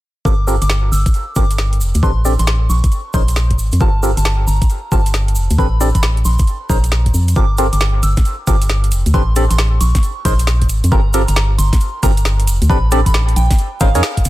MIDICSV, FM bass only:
0, 0, Header, 1, 2, 480
1, 0, Start_track
1, 0, Tempo, 444444
1, 272, Time_signature, 4, 2, 24, 8
1, 15435, End_track
2, 0, Start_track
2, 0, Title_t, "FM bass"
2, 0, Program_c, 0, 39
2, 271, Note_on_c, 0, 31, 95
2, 639, Note_off_c, 0, 31, 0
2, 667, Note_on_c, 0, 31, 83
2, 977, Note_off_c, 0, 31, 0
2, 993, Note_on_c, 0, 31, 86
2, 1130, Note_off_c, 0, 31, 0
2, 1472, Note_on_c, 0, 31, 94
2, 1952, Note_on_c, 0, 29, 80
2, 1968, Note_off_c, 0, 31, 0
2, 2089, Note_off_c, 0, 29, 0
2, 2106, Note_on_c, 0, 38, 91
2, 2182, Note_off_c, 0, 38, 0
2, 2191, Note_on_c, 0, 33, 96
2, 2559, Note_off_c, 0, 33, 0
2, 2585, Note_on_c, 0, 33, 81
2, 2896, Note_off_c, 0, 33, 0
2, 2911, Note_on_c, 0, 34, 82
2, 3049, Note_off_c, 0, 34, 0
2, 3391, Note_on_c, 0, 34, 98
2, 3871, Note_on_c, 0, 32, 78
2, 3887, Note_off_c, 0, 34, 0
2, 4009, Note_off_c, 0, 32, 0
2, 4026, Note_on_c, 0, 41, 88
2, 4102, Note_off_c, 0, 41, 0
2, 4111, Note_on_c, 0, 31, 97
2, 4479, Note_off_c, 0, 31, 0
2, 4505, Note_on_c, 0, 31, 85
2, 4816, Note_off_c, 0, 31, 0
2, 4832, Note_on_c, 0, 31, 85
2, 4970, Note_off_c, 0, 31, 0
2, 5311, Note_on_c, 0, 31, 96
2, 5792, Note_on_c, 0, 29, 84
2, 5809, Note_off_c, 0, 31, 0
2, 5930, Note_off_c, 0, 29, 0
2, 5947, Note_on_c, 0, 38, 91
2, 6023, Note_off_c, 0, 38, 0
2, 6031, Note_on_c, 0, 33, 98
2, 6399, Note_off_c, 0, 33, 0
2, 6426, Note_on_c, 0, 33, 83
2, 6737, Note_off_c, 0, 33, 0
2, 6752, Note_on_c, 0, 34, 82
2, 6889, Note_off_c, 0, 34, 0
2, 7232, Note_on_c, 0, 34, 95
2, 7697, Note_off_c, 0, 34, 0
2, 7712, Note_on_c, 0, 41, 91
2, 7933, Note_off_c, 0, 41, 0
2, 7951, Note_on_c, 0, 31, 96
2, 8319, Note_off_c, 0, 31, 0
2, 8347, Note_on_c, 0, 31, 85
2, 8657, Note_off_c, 0, 31, 0
2, 8671, Note_on_c, 0, 31, 83
2, 8809, Note_off_c, 0, 31, 0
2, 9152, Note_on_c, 0, 31, 98
2, 9633, Note_on_c, 0, 29, 82
2, 9649, Note_off_c, 0, 31, 0
2, 9770, Note_off_c, 0, 29, 0
2, 9788, Note_on_c, 0, 38, 89
2, 9863, Note_off_c, 0, 38, 0
2, 9871, Note_on_c, 0, 33, 99
2, 10239, Note_off_c, 0, 33, 0
2, 10266, Note_on_c, 0, 33, 83
2, 10577, Note_off_c, 0, 33, 0
2, 10593, Note_on_c, 0, 34, 82
2, 10730, Note_off_c, 0, 34, 0
2, 11071, Note_on_c, 0, 34, 100
2, 11551, Note_on_c, 0, 32, 84
2, 11567, Note_off_c, 0, 34, 0
2, 11689, Note_off_c, 0, 32, 0
2, 11707, Note_on_c, 0, 41, 93
2, 11783, Note_off_c, 0, 41, 0
2, 11791, Note_on_c, 0, 31, 100
2, 12159, Note_off_c, 0, 31, 0
2, 12188, Note_on_c, 0, 31, 81
2, 12498, Note_off_c, 0, 31, 0
2, 12512, Note_on_c, 0, 31, 88
2, 12650, Note_off_c, 0, 31, 0
2, 12992, Note_on_c, 0, 31, 95
2, 13473, Note_on_c, 0, 29, 81
2, 13489, Note_off_c, 0, 31, 0
2, 13610, Note_off_c, 0, 29, 0
2, 13627, Note_on_c, 0, 38, 92
2, 13703, Note_off_c, 0, 38, 0
2, 13711, Note_on_c, 0, 33, 97
2, 14079, Note_off_c, 0, 33, 0
2, 14106, Note_on_c, 0, 33, 84
2, 14417, Note_off_c, 0, 33, 0
2, 14433, Note_on_c, 0, 34, 89
2, 14570, Note_off_c, 0, 34, 0
2, 14912, Note_on_c, 0, 32, 77
2, 15068, Note_on_c, 0, 41, 88
2, 15085, Note_off_c, 0, 32, 0
2, 15144, Note_off_c, 0, 41, 0
2, 15392, Note_on_c, 0, 29, 84
2, 15435, Note_off_c, 0, 29, 0
2, 15435, End_track
0, 0, End_of_file